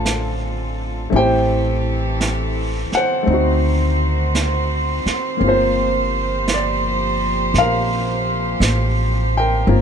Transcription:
Already playing: upright bass A1, cello section D3 A3 C4 F4 A4, grand piano A3 C4 D4 F4 C5 F5 A5
0.05 brush sweep, snare, hi-hat pedal
1.10 upright bass A1, cello section E3 G4 A4, grand piano A3 C4 E4, brush sweep
1.16 grand piano G4 C5 G5
2.21 brush sweep, snare, hi-hat pedal
2.92 grand piano F#5, muted upright bass stroke, snare
2.97 grand piano C5
3.23 grand piano A3 C4
3.27 upright bass D2, cello section D#3 F#4 C5, grand piano D#4, brush sweep
3.34 grand piano F#4
4.35 brush sweep, snare, hi-hat pedal
5.06 muted upright bass stroke, snare
5.37 upright bass G1, grand piano A#3 C4
5.41 cello section F3 A#3 G4, grand piano F4, brush sweep
5.47 grand piano F4 A#4 C5
6.48 brush sweep, snare, hi-hat pedal
6.54 grand piano D5
7.54 upright bass A#1, brush sweep, snare
7.58 grand piano A#4 F5
8.60 upright bass A1, brush sweep, snare, hi-hat pedal
9.37 grand piano A#4 G5
9.67 upright bass G1, grand piano A#3 C4 F4 A#4, cello section A#4, brush sweep

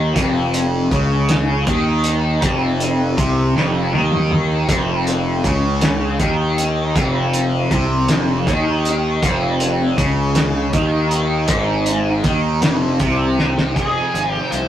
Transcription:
Already playing: picked electric bass D#2, distorted electric guitar D#3
0.15 picked electric bass F1, distorted electric guitar F2, kick, closed hi-hat
0.54 closed hi-hat
0.91 picked electric bass C#2, distorted electric guitar C#3, kick, closed hi-hat
1.29 snare, closed hi-hat
1.67 picked electric bass D#2, distorted electric guitar D#3, kick, closed hi-hat
2.04 closed hi-hat
2.41 picked electric bass F1, distorted electric guitar F2, kick, closed hi-hat
2.80 closed hi-hat
3.17 picked electric bass C2, distorted electric guitar C3, kick, closed hi-hat
3.55 picked electric bass F1, distorted electric guitar F2, snare
3.93 picked electric bass D#2, distorted electric guitar D#3, high tom
4.12 mid tom
4.31 mid tom
4.68 picked electric bass F1, distorted electric guitar F2, kick, closed hi-hat
5.07 closed hi-hat
5.44 picked electric bass C#2, distorted electric guitar C#3, kick, closed hi-hat
5.81 snare, closed hi-hat
6.20 picked electric bass D#2, distorted electric guitar D#3, kick, closed hi-hat
6.58 closed hi-hat
6.95 picked electric bass F1, distorted electric guitar F2, kick, closed hi-hat
7.34 closed hi-hat
7.71 picked electric bass C2, distorted electric guitar C3, kick, closed hi-hat
8.08 picked electric bass F1, distorted electric guitar F2, snare, closed hi-hat
8.47 picked electric bass D#2, distorted electric guitar D#3, kick, closed hi-hat
8.85 closed hi-hat
9.22 picked electric bass F1, distorted electric guitar F2, kick, closed hi-hat
9.60 closed hi-hat
9.97 picked electric bass C#2, distorted electric guitar C#3, kick, closed hi-hat
10.35 snare, closed hi-hat
10.73 picked electric bass D#2, distorted electric guitar D#3, kick, closed hi-hat
11.11 closed hi-hat
11.48 picked electric bass G#1, distorted electric guitar G#2, kick, closed hi-hat
11.86 closed hi-hat
12.24 picked electric bass D#2, distorted electric guitar D#3, kick, closed hi-hat
12.61 picked electric bass F1, distorted electric guitar F2, snare, closed hi-hat
13.00 picked electric bass C2, distorted electric guitar C3, kick, closed hi-hat
13.39 snare
13.58 snare
13.74 picked electric bass F1, distorted electric guitar F2 C3 F3, lead electric guitar G#4, kick, closed hi-hat
14.14 picked electric bass G#1, closed hi-hat
14.30 lead electric guitar G4
14.51 picked electric bass C2, lead electric guitar C5, closed hi-hat

